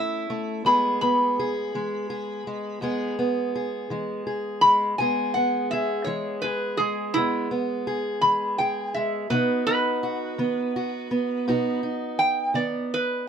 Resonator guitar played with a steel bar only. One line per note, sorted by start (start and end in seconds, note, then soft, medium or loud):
0.00 0.63 E5 medium
0.66 1.00 B5 medium
1.01 3.14 B5 medium
4.61 4.97 B5 loud
4.98 5.33 G#5 medium
5.34 5.69 F#5 medium
5.71 6.05 E5 medium
6.04 6.40 C#5 medium
6.42 6.77 B4 medium
6.77 7.13 G#4 medium
7.14 7.49 E4 loud
8.21 8.57 B5 medium
8.58 8.93 G5 medium
8.94 9.30 E5 medium
9.30 9.65 B4 medium
9.67 11.79 B4 medium
12.19 12.54 G5 medium
12.55 12.90 D5 medium
12.94 13.28 B4 medium